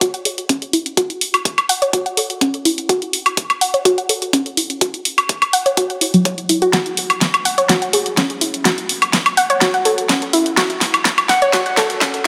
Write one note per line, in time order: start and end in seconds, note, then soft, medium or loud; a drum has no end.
0.01 0.07 F#4 loud
0.01 kick loud
0.01 closed hi-hat medium
0.14 0.22 F#5 medium
0.14 closed hi-hat soft
0.25 0.34 G#4 medium
0.25 open hi-hat loud
0.38 closed hi-hat soft
0.49 0.55 C#4 medium
0.49 kick loud
0.49 closed hi-hat medium
0.62 closed hi-hat soft
0.73 0.79 E4 medium
0.73 open hi-hat medium
0.86 closed hi-hat soft
0.97 1.03 F#4 loud
0.97 kick loud
0.97 closed hi-hat medium
1.10 closed hi-hat soft
1.21 open hi-hat loud
1.34 closed hi-hat soft
1.34 high woodblock medium
1.45 kick loud
1.45 closed hi-hat medium
1.58 closed hi-hat soft
1.58 high woodblock medium
1.69 1.78 F#5 loud
1.69 open hi-hat medium
1.82 1.85 C#5 loud
1.82 closed hi-hat soft
1.93 1.99 F#4 loud
1.93 kick loud
1.93 closed hi-hat medium
2.06 2.14 F#5 medium
2.06 closed hi-hat soft
2.17 2.26 A4 medium
2.17 open hi-hat loud
2.30 closed hi-hat soft
2.41 2.47 C#4 medium
2.41 kick loud
2.41 closed hi-hat medium
2.54 closed hi-hat soft
2.65 2.71 E4 medium
2.65 open hi-hat medium
2.78 closed hi-hat soft
2.89 2.95 F#4 loud
2.89 kick loud
2.89 closed hi-hat medium
3.02 closed hi-hat soft
3.13 open hi-hat loud
3.26 closed hi-hat soft
3.26 high woodblock medium
3.37 kick loud
3.37 closed hi-hat medium
3.50 closed hi-hat soft
3.50 high woodblock medium
3.61 3.70 F#5 loud
3.61 open hi-hat medium
3.74 3.77 C#5 loud
3.74 closed hi-hat soft
3.85 3.91 F#4 loud
3.85 kick loud
3.85 closed hi-hat medium
3.98 4.06 F#5 medium
3.98 closed hi-hat soft
4.09 4.18 A4 medium
4.09 open hi-hat loud
4.22 closed hi-hat soft
4.33 4.39 C#4 medium
4.33 kick loud
4.33 closed hi-hat medium
4.46 closed hi-hat soft
4.57 4.63 E4 medium
4.57 open hi-hat medium
4.70 closed hi-hat soft
4.81 4.87 F#4 loud
4.81 kick loud
4.81 closed hi-hat medium
4.94 closed hi-hat soft
5.05 open hi-hat loud
5.18 closed hi-hat soft
5.18 high woodblock medium
5.29 kick loud
5.29 closed hi-hat medium
5.42 closed hi-hat soft
5.42 high woodblock medium
5.53 5.62 F#5 loud
5.53 open hi-hat medium
5.66 5.69 C#5 loud
5.66 closed hi-hat soft
5.77 5.83 F#4 loud
5.77 kick loud
5.77 closed hi-hat medium
5.90 5.98 F#5 medium
5.90 closed hi-hat soft
6.01 6.05 E4 medium
6.01 open hi-hat loud
6.14 6.17 F#3 medium
6.14 closed hi-hat soft
6.25 6.31 C#5 medium
6.25 kick loud
6.25 closed hi-hat medium
6.38 closed hi-hat soft
6.49 6.55 E4 medium
6.49 open hi-hat loud
6.62 6.67 F#4 loud
6.62 closed hi-hat soft
6.73 6.79 F#4 loud
6.73 kick loud
6.73 snare soft
6.73 closed hi-hat medium
6.86 closed hi-hat soft
6.97 open hi-hat loud
7.10 closed hi-hat soft
7.10 high woodblock medium
7.21 kick loud
7.21 snare medium
7.21 closed hi-hat medium
7.34 closed hi-hat soft
7.34 high woodblock medium
7.45 7.54 F#5 loud
7.45 open hi-hat medium
7.58 7.61 C#5 loud
7.58 closed hi-hat soft
7.69 7.75 F#4 loud
7.69 kick loud
7.69 snare medium
7.69 closed hi-hat medium
7.82 7.90 F#5 medium
7.82 closed hi-hat soft
7.93 8.02 G#4 medium
7.93 open hi-hat loud
8.06 closed hi-hat soft
8.17 8.23 C#4 medium
8.17 kick loud
8.17 snare medium
8.17 closed hi-hat medium
8.30 closed hi-hat soft
8.41 8.47 E4 medium
8.41 open hi-hat medium
8.54 closed hi-hat soft
8.65 8.71 F#4 loud
8.65 kick loud
8.65 snare medium
8.65 closed hi-hat medium
8.78 closed hi-hat soft
8.89 open hi-hat loud
9.02 closed hi-hat soft
9.02 high woodblock medium
9.13 kick loud
9.13 snare medium
9.13 closed hi-hat medium
9.26 closed hi-hat soft
9.26 high woodblock medium
9.37 9.46 F#5 loud
9.37 open hi-hat medium
9.50 9.53 C#5 loud
9.50 closed hi-hat soft
9.61 9.67 F#4 loud
9.61 kick loud
9.61 snare medium
9.61 closed hi-hat medium
9.74 9.82 F#5 medium
9.74 closed hi-hat soft
9.85 9.94 A4 medium
9.85 open hi-hat loud
9.98 closed hi-hat soft
10.09 10.15 C#4 medium
10.09 kick loud
10.09 snare medium
10.09 closed hi-hat medium
10.22 closed hi-hat soft
10.33 10.39 E4 medium
10.33 open hi-hat medium
10.46 closed hi-hat soft
10.57 10.63 F#4 loud
10.57 kick loud
10.57 snare medium
10.57 closed hi-hat loud
10.70 closed hi-hat soft
10.81 snare medium
10.81 open hi-hat loud
10.94 closed hi-hat soft
10.94 high woodblock medium
11.05 kick loud
11.05 snare medium
11.05 closed hi-hat loud
11.18 closed hi-hat soft
11.18 high woodblock medium
11.29 11.38 F#5 loud
11.29 snare medium
11.29 open hi-hat medium
11.42 11.45 C#5 loud
11.42 closed hi-hat soft
11.53 11.59 F#4 loud
11.53 kick loud
11.53 snare medium
11.53 closed hi-hat medium
11.66 11.74 F#5 medium
11.66 closed hi-hat soft
11.77 11.86 A4 medium
11.77 snare medium
11.77 open hi-hat loud
11.90 closed hi-hat soft
12.01 12.07 C#4 medium
12.01 kick loud
12.01 snare medium
12.01 closed hi-hat loud
12.14 closed hi-hat soft